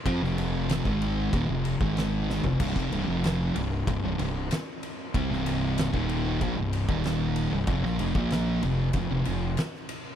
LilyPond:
<<
  \new Staff \with { instrumentName = "Distorted electric guitar" } { \clef bass \time 4/4 \key c \minor \tempo 4 = 94 <f c'>16 <f, c f>4 <aes, ees aes>8. <ees, bes,>16 <f, c>8 <aes, ees aes>4 <f, c>16 | <c, g,>16 <f, c>16 <c, g,>16 <f, c f>8. <c, g,>8 <c, g,>16 <c, g,>16 <c, g,>8 r4 | <c g>16 <c, g, c>4 <ees, bes, ees>8. <bes, f>16 <c, g,>8 <ees, bes, ees>4 <c, g,>16 | <f, c>16 <bes, f>16 <f, c>16 <bes, f bes>8. <f, c>8 <f, c>16 <f, c>16 <f, c>8 r4 | }
  \new Staff \with { instrumentName = "Distorted electric guitar" } { \clef bass \time 4/4 \key c \minor <f c'>16 <f, c f>4 <aes, ees aes>8. <ees, bes,>16 <f, c>8 <aes, ees aes>4 <f, c>16 | <c, g,>16 <f, c>16 <c, g,>16 <f, c f>8. <c, g,>8 <c, g,>16 <c, g,>16 <c, g,>8 r4 | <c g>16 <c, g, c>4 <ees, bes, ees>8. <bes, f>16 <c, g,>8 <ees, bes, ees>4 <c, g,>16 | <f, c>16 <bes, f>16 <f, c>16 <bes, f bes>8. <f, c>8 <f, c>16 <f, c>16 <f, c>8 r4 | }
  \new Staff \with { instrumentName = "Fingered electric bass" } { \clef bass \time 4/4 \key c \minor f,16 f,,4 aes,,8. ees,,16 f,,8 aes,,4 f,,16 | c,,16 f,,16 c,,16 f,,8. c,,8 c,,16 c,,16 c,,8 r4 | c,16 c,,4 ees,,8. bes,,16 c,,8 ees,,4 c,,16 | f,,16 bes,,16 f,,16 bes,,8. f,,8 f,,16 f,,16 f,,8 r4 | }
  \new DrumStaff \with { instrumentName = "Drums" } \drummode { \time 4/4 <bd cymr>16 sn16 cymr8 <cymr sn>16 bd16 cymr8 <bd cymr>8 cymr16 bd16 <cymr sn>8 sn16 tomfh16 | <cymc bd>16 <bd sn>16 cymr8 <cymr sn>8 cymr8 <bd cymr>8 cymr8 <cymr sn>8 cymr8 | <bd cymr>16 sn16 cymr8 <cymr sn>16 bd16 cymr8 <bd cymr>8 cymr16 bd16 <cymr sn>8 cymr8 | <bd cymr>16 sn16 cymr16 bd16 <cymr sn>8 cymr8 <bd cymr>8 cymr8 <cymr sn>16 sn16 cymr8 | }
>>